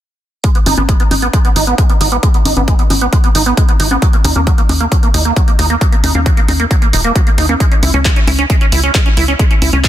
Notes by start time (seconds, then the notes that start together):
0.44 G#3, kick, closed hi-hat
0.55 B3, closed hi-hat
0.66 G#1 D#4, open hi-hat, high conga
0.77 G#1 B3, closed hi-hat, high conga
0.89 G#3, kick, closed hi-hat
1.00 B3, closed hi-hat
1.11 G#1 D#4, open hi-hat, high conga
1.22 B3, closed hi-hat
1.33 G#3, kick, closed hi-hat
1.45 B3, closed hi-hat
1.56 G#1 D#4, open hi-hat
1.67 B3, closed hi-hat
1.78 G#3, kick, closed hi-hat
1.90 B3, closed hi-hat
2.01 G#1 D#4, open hi-hat
2.12 B3, closed hi-hat
2.23 G#3, kick, closed hi-hat
2.34 B3, closed hi-hat
2.45 G#1 D#4, open hi-hat, high conga
2.57 G#1 B3, closed hi-hat, high conga
2.68 G#3, kick, closed hi-hat
2.79 B3, closed hi-hat
2.90 G#1 D#4, open hi-hat, high conga
3.01 B3, closed hi-hat
3.13 G#3, kick, closed hi-hat
3.24 B3, closed hi-hat
3.35 G#1 D#4, open hi-hat
3.46 B3, closed hi-hat
3.57 G#3, kick, closed hi-hat
3.69 B3, closed hi-hat
3.80 G#1 D#4, open hi-hat
3.91 B3, closed hi-hat, high conga
4.02 F#3, kick, closed hi-hat
4.13 A#3, closed hi-hat
4.24 D#2 D#4, open hi-hat, high conga
4.36 D#2 A#3, closed hi-hat, high conga
4.47 F#3, kick, closed hi-hat
4.58 A#3, closed hi-hat
4.69 D#2 D#4, open hi-hat, high conga
4.80 A#3, closed hi-hat
4.92 F#3, kick, closed hi-hat
5.03 A#3, closed hi-hat
5.14 D#2 D#4, open hi-hat
5.25 A#3, closed hi-hat
5.36 F#3, kick, closed hi-hat
5.48 A#3, closed hi-hat
5.59 D#2 D#4, open hi-hat
5.70 A#3, closed hi-hat
5.81 F#3, kick, closed hi-hat
5.92 A#3, closed hi-hat
6.04 D#2 D#4, open hi-hat, high conga
6.15 D#2 A#3, closed hi-hat, high conga
6.26 F#3, kick, closed hi-hat
6.37 A#3, closed hi-hat
6.48 D#2 D#4, open hi-hat, high conga
6.60 A#3, closed hi-hat
6.71 F#3, kick, closed hi-hat
6.82 A#3, closed hi-hat
6.93 D#1 D#4, open hi-hat
7.04 A#3, closed hi-hat
7.16 F#3, kick, closed hi-hat
7.27 A#3, closed hi-hat
7.38 D#2 D#4, open hi-hat
7.49 A#3, closed hi-hat, high conga
7.60 G#3, kick, closed hi-hat
7.71 C#4, closed hi-hat
7.83 C#2 E4, open hi-hat, high conga
7.94 C#2 C#4, closed hi-hat, high conga
8.05 G#3, kick, clap, closed hi-hat
8.16 C#4, closed hi-hat
8.27 C#2 E4, open hi-hat, high conga
8.39 C#4, closed hi-hat
8.50 G#3, kick, closed hi-hat
8.61 C#4, closed hi-hat
8.72 C#2 E4, open hi-hat
8.83 C#4, closed hi-hat
8.95 G#3, kick, clap, closed hi-hat
9.06 C#4, closed hi-hat
9.17 C#2 E4, open hi-hat
9.28 C#4, closed hi-hat
9.39 G#3, kick, closed hi-hat
9.51 C#4, closed hi-hat
9.62 C#2 E4, open hi-hat, high conga
9.73 C#2 C#4, closed hi-hat, high conga
9.84 G#3, kick, clap, closed hi-hat